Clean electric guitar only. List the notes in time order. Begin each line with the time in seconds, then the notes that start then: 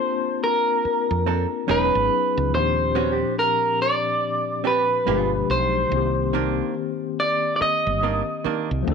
Already playing: C5
0.44 A#4
1.71 B4
2.55 C5
3.39 A#4
3.82 D5
4.67 B4
5.51 C5
7.20 D5
7.56 D5
7.62 D#5